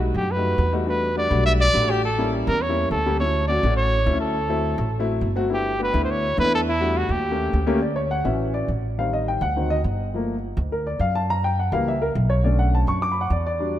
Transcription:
Already playing: upright piano G3 A3 D#4 F#4
0.14 upright bass F#2, trumpet G4
0.31 trumpet B4
0.36 upright piano G3 A3 D#4 F#4
0.58 upright bass E2
0.72 upright piano G3 A3 D#4 F#4
0.86 upright piano G3 A3 D4 F#4, trumpet B4
1.15 upright piano G3 A3 D4 F#4, trumpet D5
1.30 upright bass B1, upright piano G3 A3 D4 F#4
1.46 trumpet E5
1.61 trumpet D5
1.73 upright bass A1, upright piano G3 A3 D4 F#4
1.81 upright piano G3 A3 D4 F#4
1.90 trumpet G4
2.05 trumpet A4
2.18 upright piano G3 A#3 C#4 E4
2.47 upright bass E2, trumpet A#4
2.62 trumpet C#5
2.69 upright piano G3 A#3 C#4 E4
2.91 upright bass D2, trumpet A4
3.06 upright piano G3 A#3 C#4 G4
3.20 upright piano F#3 A3 C#4 E4, trumpet C#5
3.48 upright piano F#3 A3 C#4 F#4, trumpet D5
3.63 upright bass A1, upright piano F#3 A3 C#4 F#4
3.77 trumpet C#5
4.05 upright bass D2, upright piano F#3 A3 C#4 E4
4.12 upright piano F#3 A3 C#4 E4
4.21 trumpet A4
4.49 upright piano F#3 A3 C4 E4
4.78 upright bass A1
4.99 upright piano F#3 A3 C4 E4
5.21 upright bass G1
5.35 upright piano F#3 A3 C4 F#4
5.50 upright piano A3 B3 D4 E4, trumpet G4
5.78 upright piano A3 B3 D4 F#4
5.83 trumpet B4
5.92 upright bass D2, upright piano A3 B3 D4 E4
6.04 trumpet C5
6.11 trumpet C#5
6.36 upright bass E2, upright piano A3 B3 D4 E4, trumpet B4
6.44 upright piano A3 B3 D4 E4
6.55 trumpet A4
6.69 trumpet E4
6.81 upright piano G3 A3 D4 F#4
6.97 trumpet F#4
7.09 upright bass D#2, trumpet G4
7.31 upright piano A3 A#3 C#4 G4
7.53 upright bass D2
7.66 upright piano A3 A#3 C#4 G4
7.82 upright piano D5
7.96 upright piano C#5
8.11 upright piano F#5
8.24 upright bass A1, upright piano E3 F#3 C#4 E5
8.54 upright piano D5
8.68 upright bass A1
8.98 upright piano D#3 G3 C4 F5
9.13 upright piano D#5
9.28 upright piano G5
9.41 upright bass D2, upright piano F#5
9.56 upright piano D#3 F#3 C4
9.70 upright piano D#5
9.84 upright bass G1
10.14 upright piano F3 A3 A#3
10.57 upright bass D2
10.72 upright piano A#4
10.87 upright piano D5
10.99 upright bass F#2, upright piano F5
11.15 upright piano A5
11.30 upright piano A#5
11.44 upright piano G5
11.59 upright piano F#5
11.72 upright bass C#2, upright piano E3 G3 A#3 F5
11.88 upright piano E5
12.02 upright piano A#4
12.15 upright bass B1
12.30 upright piano C#5
12.44 upright piano D3 A3 C#4 D5
12.59 upright piano F#5
12.75 upright piano A5
12.87 upright bass F#2, upright piano C#6
13.02 upright piano D6
13.12 upright piano B5
13.21 upright piano F#5
13.30 upright bass E2, upright piano D5
13.46 upright piano D5
13.59 upright piano F#3 G3 D4

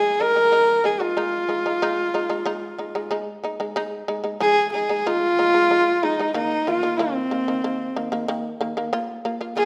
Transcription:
Already playing: shamisen G#3 D#4, horsehead fiddle G#4
0.20 shamisen G#3 D#4, horsehead fiddle A#4
0.35 shamisen G#3 D#4
0.52 shamisen G#3 D#4
0.84 shamisen G#3 D#4, horsehead fiddle G#4
1.00 shamisen G#3 D#4, horsehead fiddle F4
1.17 shamisen G#3 D#4
1.49 shamisen G#3 D#4
1.66 shamisen G#3 D#4
1.82 shamisen G#3 D#4
2.14 shamisen G#3 D#4
2.29 shamisen G#3 D#4
2.46 shamisen G#3 D#4
2.78 shamisen G#3 D#4
2.95 shamisen G#3 D#4
3.11 shamisen G#3 D#4
3.44 shamisen G#3 D#4
3.60 shamisen G#3 D#4
3.76 shamisen G#3 D#4
4.08 shamisen G#3 D#4
4.24 shamisen G#3 D#4
4.40 shamisen G#3 D#4, horsehead fiddle G#4
4.72 shamisen G#3 D#4, horsehead fiddle G#4
4.89 shamisen G#3 D#4
5.06 shamisen G#3 D#4, horsehead fiddle F4
5.39 shamisen G#3 D#4
5.54 shamisen G#3 D#4
5.71 shamisen G#3 D#4
6.03 shamisen G#3 D#4, horsehead fiddle D#4
6.19 shamisen G#3 D#4
6.34 shamisen D#3 A#3, horsehead fiddle D#4
6.67 shamisen D#3 A#3, horsehead fiddle F4
6.83 shamisen D#3 A#3
6.97 shamisen D#3 A#3, horsehead fiddle C4
7.31 shamisen D#3 A#3
7.48 shamisen D#3 A#3
7.64 shamisen D#3 A#3
7.96 shamisen D#3 A#3
8.12 shamisen D#3 A#3
8.28 shamisen D#3 A#3
8.61 shamisen D#3 A#3
8.77 shamisen D#3 A#3
8.93 shamisen A#3 F4
9.25 shamisen A#3 F4
9.41 shamisen A#3 F4
9.56 shamisen A#3 F4, horsehead fiddle G#4

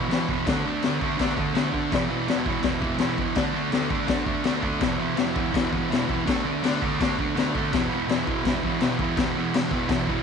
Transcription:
0.09 distorted electric guitar E2 B2 E3, snare, crash
0.29 distorted electric guitar E2 B2 E3, kick
0.47 distorted electric guitar D3 A3 D4, kick, snare, crash
0.66 distorted electric guitar D3 A3 D4
0.82 distorted electric guitar D3 A3 D4, snare, crash
1.01 distorted electric guitar D3 A3 D4, kick
1.18 distorted electric guitar D3 A3 D4, kick, snare, crash
1.35 distorted electric guitar D3 A3 D4, kick
1.55 distorted electric guitar D3 A3 D4, snare, crash
1.73 distorted electric guitar D3 A3 D4, kick
1.92 distorted electric guitar E2 B2 E3, kick, snare, crash
2.10 distorted electric guitar E2 B2 E3
2.28 distorted electric guitar E2 B2 E3, snare, crash
2.46 distorted electric guitar E2 B2 E3, kick
2.63 distorted electric guitar E2 B2 E3, kick, snare, crash
2.80 distorted electric guitar E2 B2 E3, kick
2.98 distorted electric guitar E2 B2 E3, snare, crash
3.18 distorted electric guitar E2 B2 E3, kick
3.35 distorted electric guitar D3 A3 D4, kick, snare, crash
3.54 distorted electric guitar D3 A3 D4
3.72 distorted electric guitar D3 A3 D4, snare, crash
3.90 distorted electric guitar D3 A3 D4, kick
4.07 distorted electric guitar D3 A3 D4, kick, snare, crash
4.25 distorted electric guitar D3 A3 D4, kick
4.44 distorted electric guitar D3 A3 D4, snare, crash
4.62 distorted electric guitar D3 A3 D4, kick
4.80 distorted electric guitar E2 B2 E3, kick, snare, crash
4.98 distorted electric guitar E2 B2 E3
5.17 distorted electric guitar E2 B2 E3, snare, crash
5.35 distorted electric guitar E2 B2 E3, kick
5.52 distorted electric guitar E2 B2 E3, kick, crash
5.56 snare
5.70 distorted electric guitar E2 B2 E3, kick
5.89 distorted electric guitar E2 B2 E3, crash
5.93 snare
6.07 distorted electric guitar E2 B2 E3, kick
6.25 distorted electric guitar D3 A3 D4, kick, snare, crash
6.44 distorted electric guitar D3 A3 D4
6.62 distorted electric guitar D3 A3 D4, snare, crash
6.82 distorted electric guitar D3 A3 D4, kick
7.00 distorted electric guitar D3 A3 D4, kick, snare, crash
7.19 distorted electric guitar D3 A3 D4, kick
7.36 distorted electric guitar D3 A3 D4, snare, crash
7.55 distorted electric guitar D3 A3 D4, kick
7.71 distorted electric guitar E2 B2 E3, kick, snare, crash
7.88 distorted electric guitar E2 B2 E3
8.08 distorted electric guitar E2 B2 E3, snare, crash
8.24 distorted electric guitar E2 B2 E3, kick
8.45 distorted electric guitar E2 B2 E3, kick, snare, crash
8.63 distorted electric guitar E2 B2 E3, kick
8.80 distorted electric guitar E2 B2 E3, snare, crash
8.99 distorted electric guitar E2 B2 E3, kick
9.17 distorted electric guitar E2 B2 E3, kick, snare, crash
9.36 distorted electric guitar E2 B2 E3
9.54 distorted electric guitar E2 B2 E3, snare, crash
9.71 distorted electric guitar E2 B2 E3, kick
9.88 distorted electric guitar E2 B2 E3, kick, snare, crash
10.07 distorted electric guitar E2 B2 E3, kick

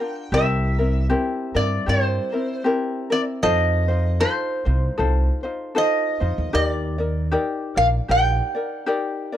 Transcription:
Already playing: resonator guitar played with a steel bar G5
0.00 ukulele D4 F4 A#4
0.32 upright bass C2, ukulele C4 E4 G4 A#4, resonator guitar played with a steel bar E5
0.78 ukulele C4 E4 A#4
1.09 ukulele C4 E4 G4 A#4
1.54 upright bass G2, ukulele C4 E4 A#4, resonator guitar played with a steel bar D5
1.86 upright bass G2, ukulele C4 E4 G4 A#4, resonator guitar played with a steel bar C5
2.32 ukulele C4 E4 A#4
2.64 ukulele C4 E4 G4 A#4
3.10 ukulele C4 E4 A#4, resonator guitar played with a steel bar D5
3.43 upright bass F2, ukulele D#4 F4 A4 C5, resonator guitar played with a steel bar D#5
3.88 ukulele D#4 F4 C5
4.20 ukulele D#4 F4 A4 C5, resonator guitar played with a steel bar C5
4.65 upright bass C2, ukulele D#4 F4 C5
4.98 upright bass C2, ukulele D#4 F4 A4 C5
5.43 ukulele D#4 F4 C5
5.75 ukulele D#4 F4 A4 C5, resonator guitar played with a steel bar D#5
6.20 upright bass F2, ukulele D#4 F4 C5
6.38 upright bass D#2
6.53 upright bass D#2, ukulele D#4 G4 A#4 D5, resonator guitar played with a steel bar D#5
6.66 resonator guitar played with a steel bar D5
6.98 ukulele D#4 A#4 D5
7.31 ukulele D#4 G4 A#4 D5
7.76 upright bass A#1, ukulele D#4 A#4 D5, resonator guitar played with a steel bar F5
8.08 upright bass A#1, ukulele D#4 G4 A#4 D5, resonator guitar played with a steel bar G5
8.55 ukulele D#4 A#4 D5
8.86 ukulele D#4 G4 A#4 D5
9.32 ukulele A#4 D5

